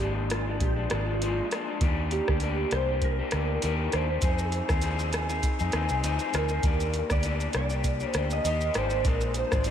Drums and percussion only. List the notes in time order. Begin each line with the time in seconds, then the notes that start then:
0.30 cross-stick, closed hi-hat
0.60 kick, closed hi-hat
0.90 cross-stick, closed hi-hat
1.22 closed hi-hat
1.51 cross-stick, closed hi-hat
1.81 kick, closed hi-hat
2.11 closed hi-hat
2.28 kick, cross-stick
2.40 closed hi-hat
2.71 cross-stick, closed hi-hat
3.02 kick, closed hi-hat
3.31 cross-stick, closed hi-hat
3.62 closed hi-hat
3.92 cross-stick, closed hi-hat
4.22 kick, closed hi-hat, shaker
4.39 shaker
4.52 closed hi-hat, shaker
4.69 kick, cross-stick, shaker
4.82 closed hi-hat, shaker
4.99 shaker
5.13 cross-stick, closed hi-hat, shaker
5.29 shaker
5.43 kick, closed hi-hat, shaker
5.59 shaker
5.72 cross-stick, closed hi-hat, shaker
5.89 shaker
6.04 closed hi-hat, shaker
6.19 shaker
6.34 cross-stick, closed hi-hat, shaker
6.49 shaker
6.63 kick, closed hi-hat, shaker
6.80 shaker
6.94 closed hi-hat, shaker
7.10 kick, cross-stick, shaker
7.23 closed hi-hat, shaker
7.40 shaker
7.53 cross-stick, closed hi-hat, shaker
7.70 shaker
7.84 kick, closed hi-hat, shaker
8.00 shaker
8.14 cross-stick, closed hi-hat, shaker
8.30 shaker
8.45 closed hi-hat, shaker
8.61 shaker
8.74 cross-stick, closed hi-hat, shaker
8.90 shaker
9.05 kick, closed hi-hat, shaker
9.21 shaker
9.34 closed hi-hat, shaker
9.52 kick, cross-stick, shaker
9.64 closed hi-hat, shaker